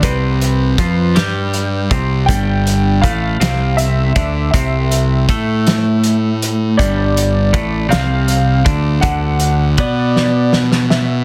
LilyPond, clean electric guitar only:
\new Staff \with { instrumentName = "Clean electric guitar" } { \clef bass \time 6/8 \key g \mixolydian \tempo 4. = 53 c4 f8 g4 c8 | g,4 a,8 c4 d8 | c4 a2 | g,4 a,8 c4 d8 |
d4 b2 | }